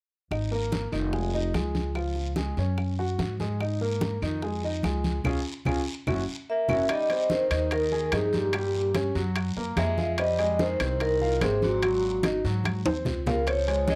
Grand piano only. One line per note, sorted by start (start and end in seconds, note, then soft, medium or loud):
0.31 0.48 D#4 medium
0.31 0.48 D#5 medium
0.51 0.85 A#3 medium
0.51 0.86 A#4 medium
0.92 1.09 D#3 medium
0.92 1.10 D#4 medium
1.13 1.30 G#3 medium
1.13 1.31 G#4 medium
1.34 1.51 D#4 medium
1.34 1.51 D#5 medium
1.55 1.89 G#3 medium
1.55 1.89 G#4 medium
1.96 2.30 F3 medium
1.96 2.30 F4 medium
2.37 2.54 G#3 medium
2.37 2.55 G#4 medium
2.58 2.92 C#4 medium
2.58 2.92 C#5 medium
2.99 3.33 F#4 medium
2.99 3.33 F#5 medium
3.40 3.57 G#3 medium
3.40 3.57 G#4 medium
3.61 3.78 D#4 medium
3.61 3.78 D#5 medium
3.81 4.15 A#3 medium
3.81 4.15 A#4 medium
4.22 4.39 D#3 medium
4.22 4.39 D#4 medium
4.43 4.60 G#3 medium
4.43 4.60 G#4 medium
4.64 4.81 D#4 medium
4.64 4.81 D#5 medium
4.84 5.18 G#3 medium
4.84 5.18 G#4 medium
5.26 5.39 C#4 medium
5.26 5.39 F4 medium
5.26 5.39 G#4 medium
5.66 5.80 C#4 medium
5.66 5.80 F4 medium
5.66 5.79 G#4 medium
6.07 6.21 C#4 medium
6.07 6.21 E4 medium
6.07 6.21 F#4 medium
6.69 6.82 C#4 medium
6.69 6.82 E4 medium
6.69 6.82 F#4 medium
6.89 7.06 D#4 medium
6.89 7.07 D#5 medium
7.10 7.44 C4 medium
7.10 7.44 C5 medium
7.51 7.85 D#4 medium
7.51 7.85 D#5 medium
7.92 8.09 G#4 medium
7.92 8.09 G#5 medium
8.13 8.47 D#4 medium
8.13 8.47 D#5 medium
8.54 8.88 G3 medium
8.54 8.88 G4 medium
8.95 9.12 C#4 medium
8.95 9.12 C#5 medium
9.15 9.49 F#3 medium
9.15 9.49 F#4 medium
9.57 9.91 A#3 medium
9.57 9.91 A#4 medium
9.98 10.15 F4 medium
9.98 10.15 F5 medium
10.19 10.36 C4 medium
10.19 10.36 C5 medium
10.39 10.73 G#3 medium
10.39 10.73 G#4 medium
10.81 11.14 C4 medium
10.81 11.14 C5 medium
11.21 11.38 F4 medium
11.21 11.38 F5 medium
11.42 11.76 C4 medium
11.42 11.76 C5 medium
11.83 12.17 F#3 medium
11.83 12.17 F#4 medium
12.25 12.41 D#4 medium
12.25 12.41 D#5 medium
12.45 12.79 F#3 medium
12.45 12.79 F#4 medium
12.86 13.20 C4 medium
12.86 13.20 C5 medium
13.27 13.44 F4 medium
13.27 13.44 F5 medium
13.47 13.64 C4 medium
13.47 13.64 C5 medium
13.68 13.95 G#3 medium
13.68 13.95 G#4 medium